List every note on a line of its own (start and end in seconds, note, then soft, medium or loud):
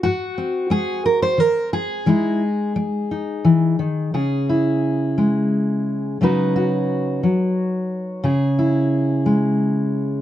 0.03 0.65 G#2 medium
0.03 1.38 F#4 medium
0.38 2.02 C4 soft
0.70 1.31 G#3 medium
0.70 1.05 G#4 medium
1.06 1.22 A#4 medium
1.22 1.40 C5 loud
1.38 1.99 D#3 medium
1.38 1.73 A#4 loud
1.73 4.13 G#4 loud
2.06 2.68 E3 medium
2.06 2.75 G#3 medium
2.06 3.10 D#4 soft
2.06 2.42 E4 soft
2.76 3.38 G#3 medium
3.11 4.11 D#4 soft
3.45 3.79 E3 medium
3.79 4.13 D#3 medium
4.14 6.20 C#3 medium
4.14 6.21 G#4 medium
4.49 6.17 E4 soft
5.18 6.17 G#3 medium
6.21 7.23 C#3 medium
6.21 7.22 F#3 soft
6.21 8.21 D#4 medium
6.21 6.55 F#4 medium
6.21 8.21 B4 medium
6.56 8.20 F#4 soft
7.23 8.24 F#3 medium
8.24 10.21 C#3 medium
8.24 10.21 G#4 medium
8.59 10.21 E4 medium
9.26 10.21 G#3 medium